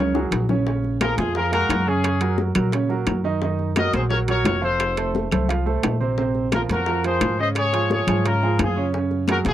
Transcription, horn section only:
Already playing: A#4 C#5
1.01 F4 A#4
1.18 F4 G#4
1.36 F4 A#4
1.53 F#4 A#4
1.88 C#4 G#4
3.77 A#4 D#5
3.95 G#4 C5
4.10 A#4 C#5
4.29 A#4 C#5
4.64 A4 C5
6.54 F4 A#4
6.72 F#4 A#4
7.05 G#4 C5
7.41 C5 D#5
7.58 G#4 C#5
7.93 G#4 C#5
8.27 F4 A#4
8.63 F4 G#4
9.31 F#4 A#4
9.49 F4 G#4

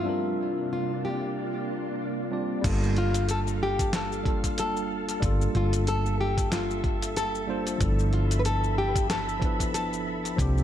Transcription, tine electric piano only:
0.03 G3 C4 D4
0.08 F4 A#4
2.31 G3 C4 D4 F4 D5
2.61 G3 A#3 D4
2.66 F4 A4
4.23 G3 A#3 D4
4.27 F4 A4
5.20 G3 A#3 D4
5.24 F4 A4
7.47 G3 A#3 D4 F4 C5
7.78 F3 B3 D4
7.82 E4 A4
9.40 F3 B3 D4
9.44 E4 B4
10.36 F3 A#3 C4
10.40 D4 G4

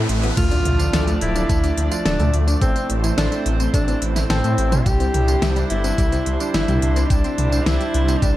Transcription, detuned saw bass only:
0.09 A1
0.37 D2
0.65 D2
0.93 D2
1.22 D1
1.49 D2
1.78 D2
2.05 D1
2.20 D2
2.34 D2
2.62 A1
2.90 A1
3.18 A1
3.46 A1
3.74 A1
4.02 A1
4.30 A1
4.44 A2
4.58 A1
4.86 C2
5.14 C2
5.42 C2
5.71 G1
5.98 C2
6.26 C2
6.54 G1
6.68 C2
6.82 C2
7.10 C2
7.38 C2
7.66 C2
7.94 C2
8.22 C2

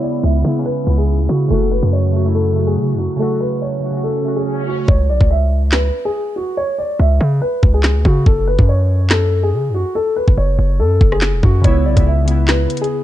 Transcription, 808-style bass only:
0.23 C#2
0.45 C#3
0.87 C#2
1.19 D2
1.29 C#3
1.50 F#1
1.83 F#2
2.77 C#3
2.93 F#2
4.88 C#2
5.09 B1
5.21 C#2
7.00 C#2
7.21 C#3
7.63 C#2
7.95 D2
8.05 C#3
8.26 F#1
8.59 F#2
9.53 C#3
9.69 F#2
10.28 F#1
10.38 F#1
10.59 F#1
10.80 F#2
11.01 F#1
11.33 E1
11.43 F#2
11.64 C#2
11.85 B1
11.97 C#2

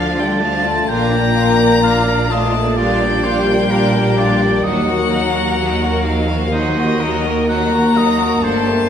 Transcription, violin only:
Already playing: F5
0.19 G5
0.43 A5
0.90 A#5
2.30 A5
2.78 G5
4.64 F#5
6.06 F5
6.53 D#5
7.48 A#5
8.42 A5

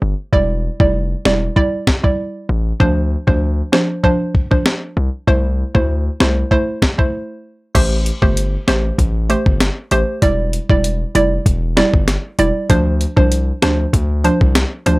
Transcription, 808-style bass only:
0.02 G1
0.33 E1
0.80 F1
1.25 E1
2.49 A1
2.80 D2
3.27 D2
4.97 C2
5.28 C2
5.75 D2
6.20 C2
7.75 A1
8.22 G1
8.68 A1
8.99 A1
9.46 G1
9.91 A1
10.22 E1
10.70 E1
11.15 F1
11.46 E1
11.94 G1
12.39 E1
12.70 D2
13.17 C2
13.63 D2
13.93 D2
14.41 C2
14.86 D2

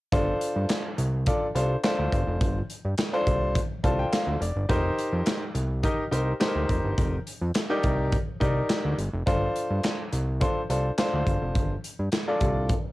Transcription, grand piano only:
0.12 D4 F4 A4 C5
1.27 D4 F4 A4 D5
1.55 D4 F4 A4 C5
1.83 D4 F4 A4 C5
3.13 D4 F4 A4 C5
3.83 D4 F4 A4 C5 A5
3.99 G5
4.12 F5
4.41 D5
4.69 D#4 G4 A#4 C5
5.83 D#4 G4 A#4 D#5
6.11 D#4 G4 A#4 C5
6.40 D#4 G4 A4 C5
6.47 A#4
7.70 D#4 G4 A#4 D5
8.40 D#4 G4 A#4 D5
9.26 D4 F4 A4 C5
10.40 D4 F4 A4 C5
10.70 D4 F4 A4 C5
10.98 D4 F4 A4 C5
12.28 D4 F4 A4 D5

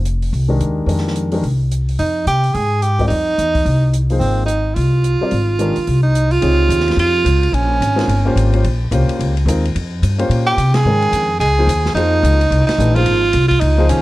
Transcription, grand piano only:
0.48 D#3 G#3 D4 G4 A#4
0.87 D#3 G#3 D4 G4 A#4
1.32 D#3 G#3 D4 G4 A#4
2.99 G3 C4 F4 A#4 D5
4.10 F3 A#3 D#4 G#4 C5
5.21 G3 C4 F4 A#4 D5
5.59 D#3 G#3 D4 G4 A#4
6.41 C3 D#4 G4 G#4 C#5
7.96 G#3 C4 D#4 F4 A#4
8.25 A#3 C#4 F4 G4 C5
8.52 A#3 C#4 F4 G4 C5
8.92 A#3 C#4 F4 G4 C5
9.47 G#3 C4 D#4 F4 A#4
10.18 A#3 C#4 F4 G4 C5
10.85 D#3 G#3 C#4 A#4 G5
11.58 F3 A#3 D#4 G#4 C5
11.96 F3 A#3 D#4 G#4 C5
12.78 E3 A3 D4 G4 B4
12.95 F3 A#3 D#4 G#4 C5
13.78 F3 A#3 D#4 G#4 C5

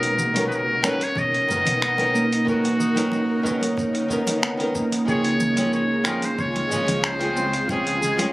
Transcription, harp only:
Already playing: D#4
0.84 C#4
1.81 B3
2.14 A#3
2.79 D#4
3.45 C#4
4.42 B3
4.75 A#3
5.07 G#4
6.05 F4
7.03 C#4
7.36 C4
8.01 G#4

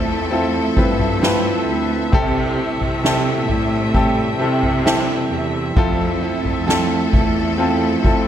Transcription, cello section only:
Already playing: E2
0.76 G2
1.66 D2
2.13 C3
2.79 C3
3.48 A2
4.39 C3
5.30 E2
5.76 F2
6.44 F2
7.13 E2
8.04 F2

